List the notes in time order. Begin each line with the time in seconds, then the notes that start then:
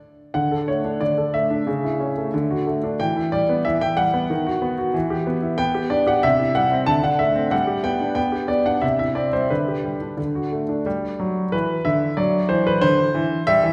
0.34 D3 F#5
0.51 A4
0.68 A3 C#5
0.85 D4
1.00 D3 D5
1.17 A4
1.34 A3 E5
1.50 D4
1.67 C#3
1.84 E4
2.00 C#4
2.17 A3
2.34 D3
2.51 F#4
2.67 A3
2.84 D4
3.00 E3 G5
3.16 E4
3.32 G3 D5
3.49 B3
3.65 E3 E5
3.81 E4 G5
3.97 G3 F#5
4.14 B3
4.30 D#3
4.47 F#4
4.62 B3
4.78 F#4
4.94 E3
5.10 G4
5.27 B3
5.42 E4
5.58 B3 G5
5.75 G4
5.90 D4 D5
6.07 G4 F#5
6.23 C3 E5
6.39 E4
6.55 G3 F#5
6.71 C4
6.86 D3 A5
7.03 D4 F#5
7.19 A3 E5
7.36 C4
7.51 G3 F#5
7.67 G4
7.84 B3 G5
8.00 D4
8.15 B3 G5
8.32 G4
8.48 B3 D5
8.65 D4 F#5
8.81 C3 E5
8.99 E4 E5
9.15 C4 D5
9.33 G3 C5
9.50 D3 B4
9.68 G4
9.84 G3
10.01 D4
10.17 D3
10.35 F#4
10.52 A3
10.69 D4
10.86 G3
11.20 F#3
11.52 E3 B4
11.85 D3 E5
12.17 F#3 D5
12.49 E3 C5
12.67 B4
12.81 D3 C5
13.15 E3
13.47 G3 E5
13.63 E3